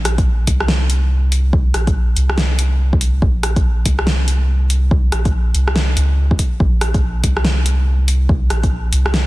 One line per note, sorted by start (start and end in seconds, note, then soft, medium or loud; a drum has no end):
0.00 0.46 A#1 loud
0.05 cross-stick medium
0.05 closed hi-hat medium
0.18 kick loud
0.18 closed hi-hat soft
0.47 1.73 C2 medium
0.47 kick medium
0.47 closed hi-hat medium
0.60 cross-stick medium
0.68 snare loud
0.90 closed hi-hat medium
1.32 closed hi-hat medium
1.53 kick loud
1.74 2.15 A#1 medium
1.74 cross-stick medium
1.74 closed hi-hat medium
1.87 kick loud
1.87 closed hi-hat soft
2.16 3.21 C2 medium
2.16 closed hi-hat medium
2.30 cross-stick medium
2.38 snare loud
2.59 closed hi-hat medium
2.93 kick loud
3.01 closed hi-hat medium
3.22 3.84 A#1 medium
3.22 kick loud
3.43 cross-stick medium
3.43 closed hi-hat medium
3.56 kick loud
3.56 closed hi-hat soft
3.85 5.11 C2 medium
3.85 kick medium
3.85 closed hi-hat medium
3.99 cross-stick medium
4.07 snare loud
4.28 closed hi-hat medium
4.70 closed hi-hat medium
4.91 kick loud
5.12 5.54 A#1 medium
5.12 cross-stick medium
5.12 closed hi-hat medium
5.25 kick loud
5.25 closed hi-hat soft
5.55 5.96 C2 medium
5.55 closed hi-hat medium
5.68 cross-stick medium
5.76 snare loud
5.97 6.38 C#2 loud
5.97 closed hi-hat medium
6.31 kick loud
6.39 kick medium
6.39 closed hi-hat medium
6.60 7.23 A#1 loud
6.60 kick loud
6.81 cross-stick medium
6.81 closed hi-hat medium
6.94 kick loud
6.94 closed hi-hat soft
7.24 8.49 C2 medium
7.24 kick medium
7.24 closed hi-hat medium
7.37 cross-stick medium
7.45 snare loud
7.66 closed hi-hat medium
8.08 closed hi-hat medium
8.29 kick loud
8.50 8.92 A#1 medium
8.50 cross-stick medium
8.50 closed hi-hat medium
8.63 kick loud
8.63 closed hi-hat soft
8.93 9.27 C2 medium
8.93 closed hi-hat medium
9.06 cross-stick medium
9.14 snare loud